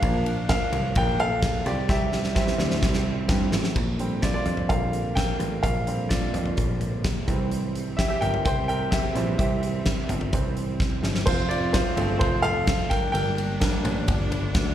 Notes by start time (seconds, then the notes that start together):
Already playing: A#3 D4 A#4 F5
0.02 A#1 F3 A#3 D4, kick, ride
0.26 ride
0.49 A#4 F5, kick, snare, ride
0.73 C2, floor tom, ride
0.95 A#1 A#4 G5, kick, ride
1.20 A4 F5, floor tom, ride
1.42 kick, snare, ride
1.65 C2 E3 G3 C4 G4 D5, snare, ride
1.89 C2 G4 E5, kick, snare
2.13 snare
2.24 snare
2.35 E3 G3 C4 G4 E5, kick, snare
2.48 snare
2.58 D2, snare
2.71 snare
2.82 C2, kick, snare
2.94 snare
3.28 G2 E3 G3 C4, kick, snare
3.52 A1, snare
3.64 snare
3.75 A#1 D3 G3 A#3, kick, crash
3.99 D3 G3 C4, closed hi-hat
4.22 F4 D5, kick, snare, closed hi-hat
4.34 F4 D5
4.46 F2, closed hi-hat, floor tom
4.57 floor tom
4.69 A#1 D3 G3 C4 A#4 F5, kick, closed hi-hat
4.93 closed hi-hat
5.15 A#4 G5, kick, snare, closed hi-hat
5.40 A1, closed hi-hat, floor tom
5.63 A#1 F3 A#4 F5, kick, closed hi-hat
5.87 D3 G3 C4, closed hi-hat
6.09 F4 D5, kick, snare, closed hi-hat
6.34 F2, closed hi-hat, floor tom
6.46 floor tom
6.57 A#1, kick, closed hi-hat
6.81 closed hi-hat, floor tom
7.04 kick, snare, closed hi-hat
7.27 C2 E3 G3 C4, kick, closed hi-hat, floor tom
7.51 closed hi-hat
7.75 closed hi-hat
7.97 G4 E5, kick, snare, closed hi-hat
8.08 G4 E5
8.21 G1 A#4 G5, closed hi-hat, floor tom
8.34 floor tom
8.45 C2 C5 G5, kick, closed hi-hat
8.68 A#4 G5, closed hi-hat
8.91 G4 E5, kick, snare, closed hi-hat
9.15 A#1 E3 G3 C4, snare, closed hi-hat, floor tom
9.38 C2 G4 E5, kick, closed hi-hat
9.63 closed hi-hat
9.86 kick, snare, closed hi-hat
10.09 G1, closed hi-hat, floor tom
10.21 floor tom
10.33 C2 E3 G3 C4, kick, closed hi-hat
10.57 closed hi-hat
10.80 kick, snare
11.03 G1, snare
11.15 snare
11.26 F1 F3 A3 C4 F4 C5, kick, crash
11.49 F4 D5, ride
11.73 F4 C5, kick, snare, ride
11.96 G1 F3 A3 C4, floor tom, ride
12.19 F1 F4 C5, kick, ride
12.42 A4 F5, floor tom, ride
12.67 kick, snare, ride
12.90 G1 G3 A#3 D4 A#4 G5, kick, snare, ride
13.12 G1 A#4 G5, ride
13.38 ride
13.60 G3 A#3 D4, kick, snare, ride
13.85 A1, floor tom, ride
14.08 G1, kick, ride
14.32 floor tom, ride
14.55 D2, kick, snare, ride